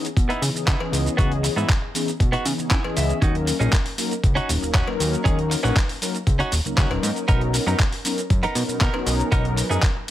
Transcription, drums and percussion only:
0.05 closed hi-hat, shaker
0.17 kick, closed hi-hat, shaker
0.30 closed hi-hat
0.42 open hi-hat, shaker
0.56 shaker
0.67 kick, clap, closed hi-hat, shaker
0.80 cowbell
0.93 open hi-hat, shaker
1.06 closed hi-hat, shaker
1.18 kick, closed hi-hat, shaker
1.32 closed hi-hat
1.44 open hi-hat, shaker
1.58 shaker
1.69 kick, clap, closed hi-hat, shaker
1.95 open hi-hat, shaker
2.08 closed hi-hat, shaker
2.20 kick, closed hi-hat, shaker
2.33 closed hi-hat
2.46 open hi-hat, shaker
2.59 shaker
2.71 kick, clap, closed hi-hat, shaker
2.84 cowbell
2.97 open hi-hat, shaker
3.09 closed hi-hat, shaker
3.22 kick, closed hi-hat, shaker
3.35 closed hi-hat
3.47 open hi-hat, shaker
3.61 shaker
3.73 kick, clap, closed hi-hat, shaker
3.86 open hi-hat
3.98 open hi-hat, shaker
4.11 closed hi-hat, shaker
4.24 kick, closed hi-hat, shaker
4.37 closed hi-hat
4.49 open hi-hat, shaker
4.63 shaker
4.74 kick, clap, closed hi-hat, shaker
4.87 cowbell
5.00 open hi-hat, shaker
5.13 closed hi-hat, shaker
5.25 kick, closed hi-hat, shaker
5.39 closed hi-hat
5.51 open hi-hat, shaker
5.63 cowbell, shaker
5.76 kick, clap, closed hi-hat, shaker
5.89 open hi-hat
6.02 open hi-hat, shaker
6.15 closed hi-hat, shaker
6.27 kick, closed hi-hat, shaker
6.40 closed hi-hat
6.52 open hi-hat, shaker
6.65 closed hi-hat, shaker
6.78 kick, clap, closed hi-hat, shaker
6.91 closed hi-hat, cowbell
7.03 open hi-hat, shaker
7.16 closed hi-hat, shaker
7.28 kick, closed hi-hat, shaker
7.41 closed hi-hat
7.54 open hi-hat, shaker
7.67 shaker
7.79 kick, clap, closed hi-hat, shaker
7.92 open hi-hat
8.05 open hi-hat, shaker
8.18 closed hi-hat, shaker
8.30 kick, closed hi-hat, shaker
8.43 closed hi-hat
8.55 open hi-hat, shaker
8.69 shaker
8.81 kick, clap, closed hi-hat, shaker
8.94 cowbell
9.07 open hi-hat, shaker
9.20 shaker
9.32 kick, closed hi-hat, shaker
9.45 closed hi-hat
9.57 open hi-hat, shaker
9.71 shaker
9.82 kick, clap, closed hi-hat, shaker

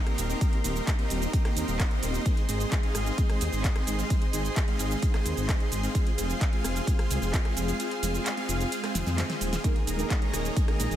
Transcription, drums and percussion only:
0.07 cross-stick, closed hi-hat
0.18 open hi-hat, cabasa
0.30 closed hi-hat, cabasa
0.41 kick, closed hi-hat, cabasa
0.53 closed hi-hat
0.64 open hi-hat, cabasa
0.76 closed hi-hat, cabasa
0.87 kick, clap, closed hi-hat, cabasa
0.99 closed hi-hat
1.10 open hi-hat, cabasa
1.22 closed hi-hat, cabasa
1.33 kick, closed hi-hat, cabasa
1.45 cross-stick, clap, closed hi-hat
1.57 open hi-hat, cabasa
1.68 closed hi-hat, cabasa
1.80 kick, cross-stick, clap, closed hi-hat, cabasa
1.91 closed hi-hat
2.03 open hi-hat, cabasa
2.14 closed hi-hat, cabasa
2.26 kick, closed hi-hat, cabasa
2.37 closed hi-hat
2.49 open hi-hat, cabasa
2.60 closed hi-hat, cabasa
2.72 kick, clap, closed hi-hat, cabasa
2.83 closed hi-hat
2.95 cross-stick, open hi-hat, cabasa
3.06 closed hi-hat, cabasa
3.18 kick, closed hi-hat, cabasa
3.30 cross-stick, closed hi-hat
3.41 open hi-hat, cabasa
3.53 closed hi-hat, cabasa
3.64 kick, clap, closed hi-hat, cabasa
3.76 cross-stick, closed hi-hat
3.87 open hi-hat, cabasa
3.99 closed hi-hat, cabasa
4.10 kick, closed hi-hat, cabasa
4.22 closed hi-hat
4.33 open hi-hat, cabasa
4.45 closed hi-hat, cabasa
4.56 kick, clap, closed hi-hat, cabasa
4.68 closed hi-hat
4.79 open hi-hat, cabasa
4.91 closed hi-hat, cabasa
5.02 kick, closed hi-hat, cabasa
5.14 cross-stick, clap, closed hi-hat
5.26 open hi-hat, cabasa
5.37 closed hi-hat, cabasa
5.49 kick, cross-stick, clap, closed hi-hat, cabasa
5.60 closed hi-hat
5.72 open hi-hat, cabasa
5.83 closed hi-hat, cabasa
5.95 kick, closed hi-hat, cabasa
6.07 closed hi-hat
6.18 open hi-hat, cabasa
6.30 closed hi-hat, cabasa
6.41 kick, clap, closed hi-hat, cabasa
6.53 closed hi-hat
6.64 cross-stick, open hi-hat, cabasa
6.76 closed hi-hat, cabasa
6.87 kick, closed hi-hat, cabasa
6.99 cross-stick, closed hi-hat
7.11 open hi-hat, cabasa
7.22 closed hi-hat, cabasa
7.33 kick, clap, closed hi-hat, cabasa
7.45 cross-stick, closed hi-hat
7.57 open hi-hat, cabasa
7.68 closed hi-hat, cabasa
7.80 closed hi-hat, cabasa
7.91 closed hi-hat
8.03 open hi-hat, cabasa
8.14 closed hi-hat, cabasa
8.26 clap, closed hi-hat, cabasa
8.37 closed hi-hat
8.49 open hi-hat, cabasa
8.61 closed hi-hat, cabasa
8.72 closed hi-hat, cabasa
8.84 cross-stick, clap, closed hi-hat
8.95 snare, open hi-hat, cabasa
9.07 snare, closed hi-hat, cabasa
9.18 snare, clap, closed hi-hat, cabasa
9.30 snare, closed hi-hat
9.41 open hi-hat, cabasa
9.53 snare, closed hi-hat, cabasa
9.64 kick, closed hi-hat, cabasa
9.76 closed hi-hat
9.87 open hi-hat, cabasa
9.99 closed hi-hat, cabasa
10.10 kick, clap, closed hi-hat, cabasa
10.22 closed hi-hat
10.33 cross-stick, open hi-hat, cabasa
10.45 closed hi-hat, cabasa
10.56 kick, closed hi-hat, cabasa
10.68 cross-stick, closed hi-hat
10.80 open hi-hat, cabasa
10.91 closed hi-hat, cabasa

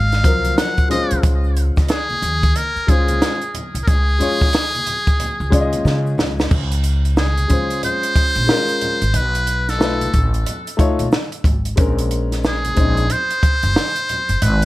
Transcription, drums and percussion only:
0.12 snare, closed hi-hat, shaker
0.24 kick, closed hi-hat, shaker
0.45 closed hi-hat, high conga, shaker
0.58 snare, closed hi-hat, shaker
0.78 kick, closed hi-hat, shaker
0.91 closed hi-hat, high conga, low conga, shaker
1.11 closed hi-hat, shaker
1.23 kick, closed hi-hat, shaker
1.44 shaker
1.56 closed hi-hat, shaker
1.76 kick, snare, closed hi-hat, shaker
1.88 snare, closed hi-hat, shaker
2.09 high conga, shaker
2.21 closed hi-hat, low conga, shaker
2.43 kick, closed hi-hat, shaker
2.55 closed hi-hat, high conga, shaker
2.76 shaker
2.88 kick, closed hi-hat, shaker
3.08 closed hi-hat, high conga, shaker
3.21 snare, closed hi-hat, shaker
3.42 closed hi-hat, shaker
3.54 closed hi-hat, high conga, low conga, shaker
3.75 closed hi-hat, shaker
3.87 kick, closed hi-hat, shaker
4.09 shaker
4.21 closed hi-hat, shaker
4.41 kick, snare, closed hi-hat, shaker
4.53 snare, closed hi-hat, shaker
4.75 closed hi-hat, high conga, shaker
4.87 closed hi-hat, low conga, shaker
5.07 kick, closed hi-hat, shaker
5.20 closed hi-hat, high conga, low conga, shaker
5.40 shaker
5.52 kick, closed hi-hat, shaker
5.73 closed hi-hat, high conga, shaker
5.86 snare, shaker
6.06 shaker
6.19 snare, high conga, low conga, shaker
6.39 snare, shaker
6.51 kick, crash, shaker
6.72 closed hi-hat, shaker
6.84 closed hi-hat, shaker
7.05 closed hi-hat, shaker
7.17 snare, shaker
7.38 closed hi-hat, high conga, shaker
7.50 kick, closed hi-hat, low conga, shaker
7.70 closed hi-hat, shaker
7.83 closed hi-hat, low conga, shaker
8.03 closed hi-hat, shaker
8.15 kick, closed hi-hat, shaker
8.35 closed hi-hat, high conga, shaker
8.49 snare, shaker
8.69 closed hi-hat, shaker
8.81 closed hi-hat, low conga, shaker
9.02 closed hi-hat, shaker
9.14 closed hi-hat, shaker
9.35 closed hi-hat, shaker
9.47 closed hi-hat, shaker
9.69 snare, closed hi-hat, shaker
9.81 snare, shaker
10.01 closed hi-hat, high conga, shaker
10.13 kick, closed hi-hat, low conga, shaker
10.34 closed hi-hat, shaker
10.46 closed hi-hat, low conga, shaker
10.67 closed hi-hat, shaker
10.79 kick, closed hi-hat, shaker
10.99 closed hi-hat, high conga, shaker
11.12 snare, shaker
11.32 closed hi-hat, shaker
11.44 kick, closed hi-hat, low conga, shaker
11.65 closed hi-hat, shaker
11.77 kick, closed hi-hat, shaker
11.98 closed hi-hat, shaker
12.11 closed hi-hat, shaker
12.32 snare, closed hi-hat, shaker
12.44 snare, shaker
12.65 closed hi-hat, high conga, shaker
12.77 kick, closed hi-hat, low conga, shaker
12.97 closed hi-hat, shaker
13.10 closed hi-hat, low conga, shaker
13.31 closed hi-hat, shaker
13.43 kick, closed hi-hat, shaker
13.63 closed hi-hat, high conga, shaker
13.76 snare, shaker
13.96 closed hi-hat, shaker
14.09 closed hi-hat, low conga, shaker
14.29 closed hi-hat, shaker
14.42 closed hi-hat, shaker

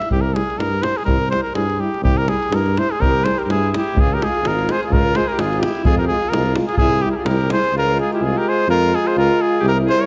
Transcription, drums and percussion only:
0.02 davul high
0.11 davul low
0.36 davul high
0.50 davul high
0.60 davul high
0.83 davul high
0.98 davul high
1.08 davul low
1.32 davul high
1.46 davul high
1.55 davul high
1.70 davul high
1.94 davul high
2.05 davul low
2.28 davul high
2.43 davul high
2.52 davul high
2.66 davul high
2.77 davul high
2.91 davul high
3.02 davul low
3.26 davul high
3.39 davul high
3.50 davul high
3.74 davul high
3.88 davul high
3.97 davul low
4.22 davul high
4.35 davul high
4.45 davul high
4.59 davul high
4.69 davul high
4.83 davul high
4.93 davul low
5.15 davul high
5.29 davul high
5.39 davul high
5.53 davul high
5.63 davul high
5.75 davul high
5.85 davul low
6.22 davul high
6.33 davul high
6.46 davul high
6.56 davul high
6.69 davul high
6.77 davul low
6.92 davul high
7.26 davul high
7.41 davul high
7.50 davul high
7.64 davul high

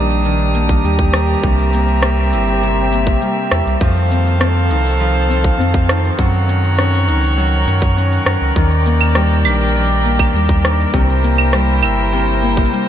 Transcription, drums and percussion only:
0.10 shaker
0.25 shaker
0.55 shaker
0.69 kick, shaker
0.85 shaker
0.99 kick
1.13 cross-stick, shaker
1.29 shaker
1.34 shaker
1.39 shaker
1.43 kick, shaker
1.59 shaker
1.73 shaker
1.88 shaker
2.03 cross-stick, shaker
2.33 shaker
2.48 shaker
2.63 shaker
2.93 shaker
3.07 kick, shaker
3.22 shaker
3.51 cross-stick, shaker
3.67 shaker
3.81 kick, shaker
3.97 shaker
4.12 shaker
4.27 shaker
4.41 cross-stick, shaker
4.71 shaker
4.86 shaker
4.90 shaker
4.93 shaker
4.97 shaker
5.01 shaker
5.08 shaker
5.12 shaker
5.31 shaker
5.44 kick, shaker
5.61 shaker
5.74 kick
5.89 cross-stick, shaker
6.05 shaker
6.19 kick, shaker
6.34 shaker
6.49 shaker
6.64 shaker
6.79 cross-stick, shaker
6.94 shaker
7.09 shaker
7.24 shaker
7.38 shaker
7.68 shaker
7.82 kick, shaker
7.98 shaker
8.12 shaker
8.26 cross-stick, shaker
8.56 kick, shaker
8.71 shaker
8.86 shaker
9.01 claves, shaker
9.15 cross-stick, shaker
9.45 claves, shaker
9.61 shaker
9.76 shaker
10.05 shaker
10.19 kick, claves, shaker
10.35 shaker
10.49 kick
10.65 cross-stick, shaker
10.80 shaker
10.94 kick, shaker
11.09 shaker
11.24 shaker
11.38 claves, shaker
11.53 cross-stick, shaker
11.83 claves, shaker
11.98 shaker
12.13 shaker
12.43 shaker
12.50 shaker
12.57 kick, shaker
12.65 shaker
12.72 shaker

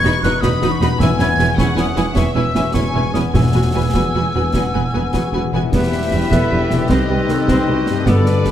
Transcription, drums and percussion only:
0.04 snare
0.23 snare
0.42 concert bass drum, snare
0.62 snare
0.81 snare
1.00 concert bass drum, snare
1.19 snare
1.39 snare
1.58 concert bass drum, snare
1.77 snare
1.96 snare
2.16 concert bass drum, snare
2.55 snare
2.74 concert bass drum, snare
3.14 snare
3.34 concert bass drum, snare
3.94 concert bass drum, snare
4.54 concert bass drum, snare
5.14 concert bass drum, snare
5.73 concert bass drum, snare, crash
6.32 concert bass drum, snare
6.70 snare
6.89 concert bass drum, snare
7.29 snare
7.48 concert bass drum, snare
7.86 snare
8.06 concert bass drum, snare
8.26 snare
8.45 snare

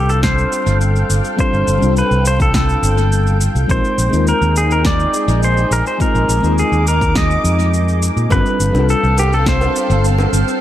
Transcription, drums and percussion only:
0.09 shaker
0.23 kick, snare, shaker
0.38 shaker
0.52 shaker
0.67 shaker
0.81 shaker
0.96 shaker
1.10 shaker
1.24 shaker
1.39 kick, shaker
1.54 shaker
1.68 shaker
1.83 shaker
1.97 shaker
2.11 shaker
2.25 shaker
2.40 kick, shaker
2.54 kick, snare, shaker
2.69 shaker
2.83 shaker
2.98 shaker
3.12 shaker
3.27 shaker
3.41 shaker
3.56 shaker
3.69 kick, shaker
3.85 shaker
3.98 shaker
4.13 shaker
4.27 shaker
4.42 shaker
4.56 shaker
4.71 shaker
4.85 kick, snare, shaker
5.00 shaker
5.14 shaker
5.29 shaker
5.43 shaker
5.57 shaker
5.72 shaker
5.86 shaker
6.00 kick, shaker
6.15 shaker
6.29 shaker
6.44 shaker
6.58 shaker
6.73 shaker
6.87 shaker
7.01 kick, shaker
7.15 kick, snare, shaker
7.31 shaker
7.45 shaker
7.60 shaker
7.74 shaker
7.88 shaker
8.02 shaker
8.17 shaker
8.30 kick, high bongo, shaker
8.46 shaker
8.60 shaker
8.75 high bongo, shaker
8.89 shaker
9.04 shaker
9.18 high bongo, shaker
9.33 shaker
9.46 kick, snare, shaker
9.61 high bongo, shaker
9.76 shaker
9.90 shaker
10.04 shaker
10.18 high bongo, shaker
10.33 shaker
10.48 shaker

